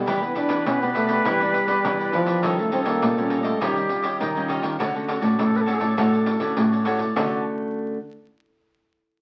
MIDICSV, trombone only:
0, 0, Header, 1, 2, 480
1, 0, Start_track
1, 0, Key_signature, 2, "major"
1, 0, Tempo, 591133
1, 59, Time_signature, 4, 2, 24, 8
1, 7481, End_track
2, 0, Start_track
2, 0, Title_t, "Trombone"
2, 0, Program_c, 0, 57
2, 0, Note_on_c, 0, 55, 89
2, 184, Note_on_c, 0, 59, 93
2, 196, Note_off_c, 0, 55, 0
2, 291, Note_off_c, 0, 59, 0
2, 296, Note_on_c, 0, 62, 88
2, 520, Note_off_c, 0, 62, 0
2, 549, Note_on_c, 0, 61, 102
2, 655, Note_off_c, 0, 61, 0
2, 673, Note_on_c, 0, 59, 86
2, 724, Note_off_c, 0, 59, 0
2, 778, Note_on_c, 0, 57, 86
2, 1028, Note_on_c, 0, 55, 95
2, 1041, Note_off_c, 0, 57, 0
2, 1734, Note_off_c, 0, 55, 0
2, 1739, Note_on_c, 0, 53, 87
2, 2116, Note_on_c, 0, 57, 76
2, 2128, Note_off_c, 0, 53, 0
2, 2214, Note_off_c, 0, 57, 0
2, 2219, Note_on_c, 0, 60, 81
2, 2272, Note_off_c, 0, 60, 0
2, 2324, Note_on_c, 0, 58, 85
2, 2623, Note_on_c, 0, 61, 80
2, 2635, Note_off_c, 0, 58, 0
2, 2772, Note_off_c, 0, 61, 0
2, 2777, Note_on_c, 0, 57, 75
2, 2937, Note_on_c, 0, 55, 84
2, 2949, Note_off_c, 0, 57, 0
2, 3656, Note_off_c, 0, 55, 0
2, 7481, End_track
0, 0, End_of_file